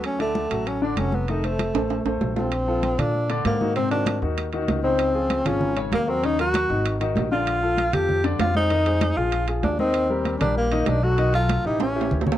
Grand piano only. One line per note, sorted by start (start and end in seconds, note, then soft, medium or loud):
0.00 0.14 F#3 medium
0.00 0.14 F#4 medium
0.00 0.14 A4 medium
0.19 0.45 D3 medium
0.19 0.45 D4 medium
0.19 0.45 D5 medium
0.50 0.76 F#3 medium
0.50 0.76 F#4 medium
0.50 0.77 A4 medium
0.82 0.95 D3 medium
0.82 0.95 D4 medium
0.82 0.95 D5 medium
0.97 1.23 F#3 medium
0.97 1.23 F#4 medium
0.97 1.23 A4 medium
1.29 1.41 D#3 medium
1.29 1.41 D#4 medium
1.29 1.41 D#5 medium
1.44 1.69 A3 medium
1.44 1.69 A4 medium
1.44 1.70 C5 medium
1.75 2.00 A3 medium
1.75 2.00 A4 medium
1.75 2.01 C5 medium
2.06 2.31 A3 medium
2.06 2.31 A4 medium
2.06 2.31 C5 medium
2.36 2.49 F3 medium
2.36 2.49 F4 medium
2.36 2.50 A4 medium
2.68 2.93 F3 medium
2.68 2.93 F4 medium
2.68 2.93 A4 medium
2.99 3.24 F3 medium
2.99 3.24 F4 medium
2.99 3.24 A4 medium
3.29 3.55 D3 medium
3.29 3.55 D4 medium
3.29 3.55 D5 medium
3.60 3.73 D#3 medium
3.60 3.73 D#4 medium
3.60 3.73 F#4 medium
3.76 3.89 C3 medium
3.76 3.89 C4 medium
3.76 3.89 C5 medium
3.91 4.17 D#3 medium
3.91 4.17 C4 medium
3.91 4.17 F#4 medium
4.22 4.48 D#3 medium
4.22 4.48 D#4 medium
4.22 4.48 F#4 medium
4.53 4.79 D#3 medium
4.53 4.79 D#4 medium
4.53 4.79 F#4 medium
4.84 5.09 C#3 medium
4.84 5.09 D#4 medium
4.84 5.10 C5 medium
5.14 5.40 F3 medium
5.14 5.40 F4 medium
5.14 5.40 G#4 medium
5.46 5.71 F3 medium
5.46 5.72 F4 medium
5.46 5.72 G#4 medium
5.76 6.02 C#3 medium
5.76 6.02 C#4 medium
5.76 6.03 C#5 medium
6.07 6.20 F#3 medium
6.07 6.20 F#4 medium
6.07 6.21 A#4 medium
6.23 6.36 C#3 medium
6.23 6.36 C#4 medium
6.23 6.36 C#5 medium
6.39 6.64 F#3 medium
6.39 6.64 F#4 medium
6.39 6.65 A#4 medium
6.69 6.95 D#3 medium
6.69 6.95 D#4 medium
6.69 6.95 F#4 medium
7.01 7.26 D#3 medium
7.01 7.26 D#4 medium
7.01 7.26 F#4 medium
7.32 7.57 D3 medium
7.32 7.57 D4 medium
7.32 7.57 D5 medium
7.63 7.88 F3 medium
7.63 7.88 F4 medium
7.63 7.88 A4 medium
7.93 8.18 F3 medium
7.93 8.19 F4 medium
7.93 8.19 A4 medium
8.24 8.49 D3 medium
8.24 8.49 D4 medium
8.24 8.50 D5 medium
8.55 8.68 G#3 medium
8.55 8.68 G#4 medium
8.55 8.68 C5 medium
8.70 8.83 D#3 medium
8.70 8.83 D#4 medium
8.70 8.84 D#5 medium
8.87 9.12 G#3 medium
8.87 9.12 G#4 medium
8.87 9.12 C5 medium
9.17 9.43 F3 medium
9.17 9.43 F4 medium
9.17 9.43 G#4 medium
9.48 9.73 F3 medium
9.48 9.74 F4 medium
9.48 9.74 G#4 medium
9.79 10.04 D#3 medium
9.79 10.05 D#4 medium
9.79 10.05 D#5 medium
10.10 10.35 G3 medium
10.10 10.35 G4 medium
10.10 10.35 A#4 medium
10.41 10.66 G3 medium
10.41 10.66 G4 medium
10.41 10.66 A#4 medium
10.72 10.97 D#3 loud
10.72 10.98 D#4 medium
10.72 10.98 D#5 medium
11.03 11.16 F#3 medium
11.03 11.16 F#4 medium
11.03 11.16 A4 medium
11.18 11.31 D#3 medium
11.18 11.31 D#4 medium
11.18 11.31 D#5 medium
11.34 11.59 F#3 medium
11.34 11.59 F4 medium
11.34 11.60 A4 medium
11.64 11.90 E3 medium
11.64 11.90 E4 medium
11.64 11.90 G4 medium
11.96 12.21 E3 medium
11.96 12.21 E4 medium
11.96 12.21 G4 medium
12.26 12.38 C#3 medium
12.26 12.38 C#4 medium
12.26 12.38 C#5 medium